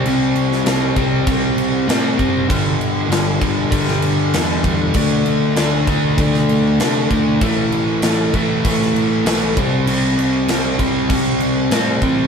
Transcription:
<<
  \new Staff \with { instrumentName = "Overdriven electric guitar" } { \clef bass \time 4/4 \key c \major \tempo 4 = 98 <c g c'>4 <c g c'>8 <c g c'>8 <c g c'>4 <c g c'>8 <c g c'>8 | <g, d g>4 <g, d g>8 <g, d g>8 <g, d g>4 <g, d g>8 <g, d g>8 | <d a d'>4 <d a d'>8 <d a d'>8 <d a d'>4 <d a d'>8 <d a d'>8 | <a, e a>4 <a, e a>8 <a, e a>8 <a, e a>4 <a, e a>8 <c g c'>8 |
<c g c'>4 <c g c'>8 <c g c'>8 <c g c'>4 <c g c'>8 <c g c'>8 | }
  \new Staff \with { instrumentName = "Picked electric bass" } { \clef bass \time 4/4 \key c \major c,8 c,8 c,8 c,8 c,8 c,8 a,8 fis,,8 | g,,8 g,,8 g,,8 g,,8 g,,8 g,,8 e,8 e,8 | d,8 d,8 d,8 d,8 d,8 d,8 c8 d,8 | a,,8 a,,8 a,,8 a,,8 a,,8 a,,8 b,,8 c,8 |
c,8 c,8 c,8 c,8 c,8 c,8 a,8 a,,8 | }
  \new DrumStaff \with { instrumentName = "Drums" } \drummode { \time 4/4 cymc8 cymc16 sn16 <cymc sn>8 <cymc bd>8 <cymc bd>8 cymc8 <cymc sn>8 <cymc bd>8 | <cymc bd>8 cymc8 <cymc sn>8 <cymc bd>8 <cymc bd>16 sn16 cymc8 <cymc sn>8 <cymc bd>8 | <cymc bd>8 cymc8 <cymc sn>8 <cymc bd>8 <cymc bd>16 sn16 cymc8 <cymc sn>8 <cymc bd>8 | <cymc bd>8 cymc8 <cymc sn>8 <cymc bd>8 <cymc bd>16 sn16 cymc8 <cymc sn>8 <cymc bd>8 |
cymc8 cymc8 <cymc sn>8 <cymc bd>8 <cymc bd>8 cymc8 <cymc sn>8 <cymc bd>8 | }
>>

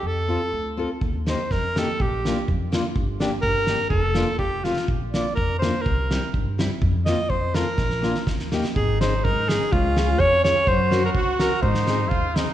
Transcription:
<<
  \new Staff \with { instrumentName = "Alto saxophone" } { \time 2/4 \key bes \major \tempo 4 = 124 a'4. r8 | r8 c''8 bes'8 a'8 | g'4 r4 | r8 d'8 bes'4 |
a'4 g'8 f'8 | r8 d''8 bes'8 c''8 | bes'4 r4 | r8 ees''8 c''8 bes'8~ |
bes'4 r4 | \key aes \mixolydian aes'8 c''8 bes'8 aes'8 | f'4 des''8 des''8 | c''8. bes'16 ges'8 bes'8 |
c''4. r8 | }
  \new Staff \with { instrumentName = "Trumpet" } { \time 2/4 \key bes \major r2 | r2 | r2 | r2 |
r2 | r2 | r2 | r2 |
r2 | \key aes \mixolydian ees'2 | des'2 | ges'2 |
ees'4 f'8 ees'8 | }
  \new Staff \with { instrumentName = "Steel-string acoustic guitar" } { \time 2/4 \key bes \major r8 <c' f' a'>8 r8 <c' f' a'>8 | r8 <bes ees' g'>8 r8 <bes ees' g'>8 | r8 <bes d' f'>8 r8 <bes d' f'>8 | r8 <bes d' g'>8 r8 <bes d' g'>8 |
r8 <bes d' f'>8 r8 <a c' f'>8 | r8 <bes d' f'>8 r8 <bes d' f'>8 | r8 <g c' e'>8 r8 <g c' e'>8 | r8 <bes c' f'>8 r8 <a c' f'>8 |
r8 <bes d' f'>8 r8 <bes ees' g'>8 | \key aes \mixolydian r8 <des' ees' aes'>8 r8 <des' ees' aes'>8 | r8 <des' f' aes'>8 r8 <des' f' aes'>8 | r8 <des' ges' bes'>8 r8 <des' ges' bes'>8 |
r8 <c' ees' aes'>8 r8 <c' ees' aes'>8 | }
  \new Staff \with { instrumentName = "Upright bass" } { \clef bass \time 2/4 \key bes \major f,4 d,4 | ees,4 f,4 | bes,,4 f,4 | g,,4 g,,4 |
f,,4 f,,4 | bes,,4 f,4 | c,4 g,4 | f,4 f,4 |
bes,,4 ees,4 | \key aes \mixolydian aes,,4 aes,4 | des,4 f,4 | ges,4 des,4 |
aes,4 ees,4 | }
  \new DrumStaff \with { instrumentName = "Drums" } \drummode { \time 2/4 r4 r4 | bd8 sn8 <bd sn>8 sn8 | bd8 sn8 bd8 sn8 | bd8 sn8 bd8 sn8 |
bd8 sn8 bd8 sn16 sn16 | bd8 sn8 bd8 sn8 | bd8 sn8 bd8 sn8 | bd8 sn8 bd8 sn8 |
<bd sn>16 sn16 sn16 sn16 <bd sn>16 sn16 sn16 sn16 | bd8 sn8 bd8 sn8 | bd8 sn8 bd8 sn8 | bd8 sn8 bd8 sn8 |
bd16 sn16 sn8 bd8 sn8 | }
>>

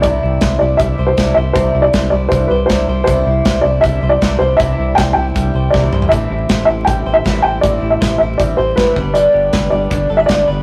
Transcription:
<<
  \new Staff \with { instrumentName = "Upright piano" } { \time 4/4 \key c \major \tempo 4 = 158 d''4. d''8 e''8. c''8. e''8 | c''8. d''8. d''8 c''8 b'8 c''4 | c''4. d''8 e''8. d''8. c''8 | e''4 g''8 g''4. d''4 |
e''4. e''8 g''8. e''8. g''8 | d''8. e''8. e''8 d''8 c''8 b'4 | d''4 r8 d''4~ d''16 e''16 d''4 | }
  \new Staff \with { instrumentName = "Clean electric guitar" } { \time 4/4 \key c \major c8 e'8 c''8 e'8 g8 c''8 e'8 c''8 | c8 e'8 c''8 e'8 g8 c''8 e'8 c''8 | c8 e'8 c''8 e'8 g8 c''8 e'8 c''8 | c8 e'8 c''8 e'8 g8 c''8 e'8 c''8 |
a,8 e'8 c''8 e'8 g8 c''8 e'8 c''8 | a,8 e'8 c''8 e'8 g8 c''8 e'8 g8 | g8 g'8 b'8 g'8 d'8 a'16 b'16 f'16 g'16 b'8 | }
  \new Staff \with { instrumentName = "Twelve-string acoustic guitar" } { \time 4/4 \key c \major <c e g d' e'>4. <g d' e'>8 <e g d' e'>8 <g d' e'>8 <c e g d' e'>8 <g d' e'>8 | <c e g d' e'>4. <g d' e'>8 <e g d' e'>8 <g d' e'>8 <c e g d' e'>8 <g d' e'>8 | <c e g d' e'>4. <g d' e'>8 <e g d' e'>8 <g d' e'>8 <c e g d' e'>8 <g d' e'>8 | <c e g d' e'>4. <g d' e'>8 <e g d' e'>8 <g d' e'>8 <c e g d' e'>8 <g d' e'>8 |
<a, e g c' e'>4. <g c' e'>8 <e g c' e'>8 <g c' e'>8 <a, e g c' e'>8 <g c' e'>8 | <a, e g c' e'>4. <g c' e'>8 <e g c' e'>8 <g c' e'>8 <a, e g c' e'>8 <g b d'>8 | <g, d g b d'>4. <g b d'>8 <d g b d'>8 <g b d'>8 <g, d g b d'>8 <g b d'>8 | }
  \new Staff \with { instrumentName = "Analog synth bass" } { \clef bass \time 4/4 \key c \major c,8 c,8 c,8 c,8 c,8 c,8 c,8 c,8 | c,8 c,8 c,8 c,8 c,8 c,8 c,8 c,8 | c,8 c,8 c,8 c,8 c,8 c,8 c,8 c,8 | c,8 c,8 c,8 c,8 c,8 c,8 c,8 c,8 |
a,,8 a,,8 a,,8 a,,8 a,,8 a,,8 a,,8 a,,8 | a,,8 a,,8 a,,8 a,,8 a,,8 a,,8 a,,8 g,,8~ | g,,8 g,,8 g,,8 g,,8 g,,8 g,,8 g,,8 g,,8 | }
  \new DrumStaff \with { instrumentName = "Drums" } \drummode { \time 4/4 <hh bd>4 <hh bd sn>4 <hh bd>4 <hh bd sn>4 | <hh bd>4 <hh bd sn>4 <hh bd>4 <hh bd sn>4 | <hh bd>4 <hh bd sn>4 <hh bd>4 <hh bd sn>4 | <hh bd>4 <hh bd sn>4 <hh bd>4 <bd sn>16 tommh16 toml16 tomfh16 |
<hh bd>4 <hh bd sn>4 <hh bd>4 <hh bd sn>4 | <hh bd>4 <hh bd sn>4 <hh bd>4 <hh bd sn>8 bd8 | hh4 <hh bd sn>4 <hh bd>4 <hh bd sn>4 | }
>>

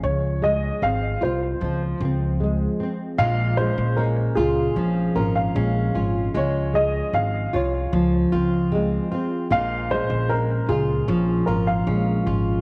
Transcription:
<<
  \new Staff \with { instrumentName = "Upright piano" } { \time 4/4 \key bes \minor \tempo 4 = 76 des''8 ees''8 f''8 c''4 r4. | f''8 c''8 bes'8 aes'4 bes'16 f''8. r8 | des''8 ees''8 f''8 des''4 r4. | f''8 c''8 bes'8 aes'4 bes'16 f''8. r8 | }
  \new Staff \with { instrumentName = "Steel-string acoustic guitar" } { \time 4/4 \key bes \minor r1 | <aes f'>8 des'8 aes8 f'8 des'8 f'8 des'8 f'8 | <aes f'>4 aes8 f'4 f'8 c'8 f'8 | <aes f'>8 des'8 aes8 f'8 des'8 f'8 des'8 f'8 | }
  \new Staff \with { instrumentName = "Nylon-string guitar" } { \time 4/4 \key bes \minor r8 aes8 c'8 f'8 f8 c'8 aes8 c'8 | bes,8 aes8 des'8 f'8 f8 des'8 aes8 des'8 | r8 aes4 f'8 f8 c'8 aes8 c'8 | bes,8 aes8 des'8 f'8 f8 des'8 aes8 des'8 | }
  \new Staff \with { instrumentName = "Upright bass" } { \clef bass \time 4/4 \key bes \minor des,4 aes,,8 c,8 des,8 des,4 r8 | bes,,8. bes,,8. des,8 bes,,8 aes,,8 bes,,8 aes,,8 | des,4 aes,,8 c,8 des,8 des,4 r8 | bes,,8. bes,,8. des,8 bes,,8 aes,,8 bes,,8 aes,,8 | }
>>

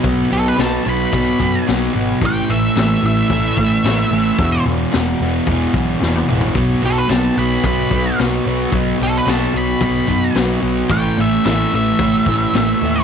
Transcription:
<<
  \new Staff \with { instrumentName = "Lead electric guitar" } { \time 4/4 \key b \phrygian \tempo 4 = 110 r8 a'16 b'16 a''8 b''8 b''4 r4 | g''8 e''8 e''8 e''2~ e''8~ | e''8 r2. r8 | r8 a'16 b'16 a''8 b''8 b''4 r4 |
r8 a'16 b'16 a''8 b''8 b''4 r4 | g''8 e''8 e''8 e''2~ e''8 | }
  \new Staff \with { instrumentName = "Distorted electric guitar" } { \clef bass \time 4/4 \key b \phrygian <b, fis b>8 <b, fis b>8 <b, fis b>8 <b, fis b>8 <b, fis b>8 <b, fis b>8 <b, fis b>8 <b, fis b>8 | <a, e a>8 <a, e a>8 <a, e a>8 <a, e a>8 <a, e a>8 <a, e a>8 <a, e a>8 <a, e a>8 | <e, b, e>8 <e, b, e>8 <e, b, e>8 <e, b, e>8 <e, b, e>8 <e, b, e>8 <e, b, e>8 <e, b, e>8 | <b, fis b>8 <b, fis b>8 <b, fis b>8 <b, fis b>8 <b, fis b>8 <b, fis b>8 <b, fis b>8 <b, fis b>8 |
<b, fis b>8 <b, fis b>8 <b, fis b>8 <b, fis b>8 <b, fis b>8 <b, fis b>8 <b, fis b>8 <b, fis b>8 | <a, e a>8 <a, e a>8 <a, e a>8 <a, e a>8 <a, e a>8 <a, e a>8 <a, e a>8 <a, e a>8 | }
  \new Staff \with { instrumentName = "Picked electric bass" } { \clef bass \time 4/4 \key b \phrygian b,,8 b,,8 b,,8 b,,8 b,,8 fis,8 b,,8 gis,,8 | a,,8 a,,8 a,,8 a,,8 a,,8 a,,8 a,,8 a,,8 | e,,8 e,,8 e,,8 e,,8 e,,8 b,,8 e,,8 a,,8 | b,,8 b,,8 b,,8 b,,8 b,,8 b,,8 b,,8 b,,8 |
b,,8 b,,8 b,,8 b,,8 b,,8 fis,8 b,,8 b,,8 | a,,8 a,,8 a,,8 a,,8 a,,8 a,,8 a,,8 dis,8 | }
  \new DrumStaff \with { instrumentName = "Drums" } \drummode { \time 4/4 <cymc bd>4 <cymc sn>4 <cymc bd>8 bd8 <cymc sn>4 | <cymc bd>4 <cymc sn>4 <cymc bd>8 bd8 <cymc sn>4 | <cymc bd>4 <cymc sn>4 <cymc bd>8 bd8 sn16 tommh16 toml16 tomfh16 | <cymc bd>4 <cymc sn>4 <cymc bd>8 bd8 <cymc sn>4 |
<cymc bd>4 <cymc sn>4 <cymc bd>8 bd8 <cymc sn>4 | <cymc bd>4 <cymc sn>4 <cymc bd>8 bd8 <cymc sn>4 | }
>>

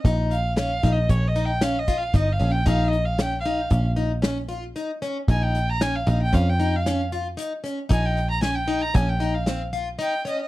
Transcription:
<<
  \new Staff \with { instrumentName = "Violin" } { \time 5/4 \key bes \dorian \tempo 4 = 114 r8 f''8 \tuplet 3/2 { f''4 ees''8 des''8 ees''8 g''8 f''8 ees''8 f''8 ees''8 f''8 g''8 } | \tuplet 3/2 { f''8 ees''8 f''8 g''8 f''4~ } f''16 r2 r8. | aes''16 g''8 bes''16 aes''16 f''8 g''16 f''16 g''8 f''8 r4. r16 | aes''16 g''8 bes''16 aes''16 g''8 bes''16 aes''16 g''8 f''8 r8. g''8 ees''16 ees''16 | }
  \new Staff \with { instrumentName = "Twelve-string acoustic guitar" } { \time 5/4 \key bes \dorian ees'4 des'8 ees'8 des'8 ees'8 des'8 f'8 ees'8 des'8 | ees'4 des'8 ees'8 des'8 ees'8 des'8 f'8 ees'8 des'8 | ees'4 des'8 ees'8 des'8 ees'8 des'8 f'8 ees'8 des'8 | ees'4 des'8 ees'8 des'8 ees'8 c'8 f'8 ees'8 des'8 | }
  \new Staff \with { instrumentName = "Picked electric bass" } { \clef bass \time 5/4 \key bes \dorian bes,,4. bes,,8 bes,,2 g,,8 bes,,8 | bes,,2 bes,,2 r4 | bes,,4. bes,,8 f,2 r4 | bes,,2 bes,,2 r4 | }
  \new DrumStaff \with { instrumentName = "Drums" } \drummode { \time 5/4 <hh bd>8 hh8 <hh sn>8 <hh bd sn>8 <hh bd>8 hh8 <hh sn>8 <hh bd sn>8 <hh bd>8 hh8 | <hh bd>8 hh8 <hh sn>8 <hh sn>8 <hh bd>8 hh8 <hh sn>8 hh8 hh8 hh8 | <hh bd>8 <hh sn>8 <hh sn>8 hh8 <hh bd sn>8 hh8 <hh sn>8 hh8 hh8 hh8 | <hh bd>8 <hh sn>8 <hh sn>8 hh8 <hh bd>8 <hh sn>8 <hh sn>8 hh8 hh8 hh8 | }
>>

